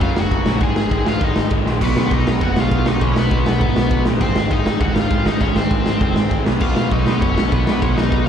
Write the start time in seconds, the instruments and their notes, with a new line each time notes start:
0.01 distorted electric guitar F#2 C#3 F#3, picked electric bass F#2, overdriven electric guitar F4 F5, kick, ride
0.16 picked electric bass F#1, overdriven electric guitar F#4 F#5, snare
0.31 picked electric bass F#1, distorted electric guitar F#2 C#3 F#3, kick, ride
0.46 picked electric bass A#1, distorted electric guitar F#2 C#3 F#3, snare
0.60 picked electric bass G#1, distorted electric guitar G#2 D#3 G#3, overdriven electric guitar G#4 G#5, kick, ride
0.76 snare
0.91 picked electric bass G#1, distorted electric guitar G#2 D#3 G#3, kick, ride
1.06 picked electric bass G#1, distorted electric guitar G#2 D#3 G#3, overdriven electric guitar F4 F5, snare
1.21 picked electric bass G#1, distorted electric guitar G#2 D#3 G#3, overdriven electric guitar D#4 D#5, kick, ride
1.36 picked electric bass G#1, snare
1.50 picked electric bass G#1, distorted electric guitar G#2 D#3 G#3, kick, ride
1.66 picked electric bass A#1, distorted electric guitar G#2 D#3 G#3, snare
1.81 picked electric bass B1, distorted electric guitar B2 F#3 B3 D#4 F#4 B4, overdriven electric guitar B3 B4, kick, crash
1.96 picked electric bass B1, snare
2.11 picked electric bass B1, overdriven electric guitar D#4 D#5, kick, ride
2.27 picked electric bass B1, snare
2.41 picked electric bass F#1, distorted electric guitar B2 F#3 B3 D#4 F#4 B4, overdriven electric guitar F#4 F#5, kick, ride
2.56 picked electric bass B1, overdriven electric guitar F4 F5, snare
2.71 picked electric bass B1, kick, ride
2.86 picked electric bass B1, overdriven electric guitar D#4 D#5, snare
3.00 picked electric bass B1, distorted electric guitar B2 F#3 B3 D#4 F#4 B4, overdriven electric guitar C#4 C#5, kick, ride
3.16 picked electric bass B1, overdriven electric guitar B3 B4, snare
3.31 picked electric bass B1, kick, ride
3.46 picked electric bass B1, snare
3.60 picked electric bass G#1, distorted electric guitar B2 F#3 B3 D#4 F#4 B4, kick, ride
3.76 picked electric bass B1, snare
3.91 picked electric bass B1, kick, ride
4.06 picked electric bass A#1, snare
4.21 picked electric bass G#1, distorted electric guitar G#2 D#3 G#3 C4 D#4 G#4, overdriven electric guitar C4 C5, kick, crash
4.35 picked electric bass G#1, snare
4.51 picked electric bass G#1, overdriven electric guitar D#4 D#5, kick, ride
4.66 picked electric bass G#1, snare
4.80 picked electric bass D#1, distorted electric guitar G#2 D#3 G#3 C4 D#4 G#4, overdriven electric guitar F#4 F#5, kick, ride
4.95 picked electric bass G#1, overdriven electric guitar F4 F5, snare
5.11 picked electric bass G#1, kick, ride
5.26 picked electric bass G#1, overdriven electric guitar D#4 D#5, snare
5.41 picked electric bass G#1, distorted electric guitar G#2 D#3 G#3 C4 D#4 G#4, overdriven electric guitar C#4 C#5, kick, ride
5.55 picked electric bass G#1, overdriven electric guitar C4 C5, snare
5.71 picked electric bass G#1, kick, ride
5.86 picked electric bass G#1, snare
6.01 picked electric bass F#1, distorted electric guitar G#2 D#3 G#3 C4 D#4 G#4, kick, ride
6.16 picked electric bass G#1, snare
6.31 picked electric bass G#1, kick, ride
6.46 picked electric bass B1, distorted electric guitar B2 F#3 B3 D#4 F#4 B4, snare
6.60 picked electric bass B1, overdriven electric guitar F4 F5, kick, crash
6.76 picked electric bass B1, snare
6.91 picked electric bass B1, overdriven electric guitar D#4 D#5, kick, ride
7.06 picked electric bass B1, distorted electric guitar B2 F#3 B3 D#4 F#4 B4, snare
7.22 picked electric bass F#1, overdriven electric guitar C#4 C#5, kick, ride
7.35 picked electric bass B1, overdriven electric guitar C#4 C#5, snare
7.52 picked electric bass B1, overdriven electric guitar B3 B4, kick, ride
7.67 picked electric bass B1, distorted electric guitar B2 F#3 B3 D#4 F#4 B4, snare
7.82 picked electric bass B1, overdriven electric guitar C#4 C#5, kick, ride
7.97 picked electric bass B1, overdriven electric guitar D#4 D#5, snare
8.12 picked electric bass B1, kick, ride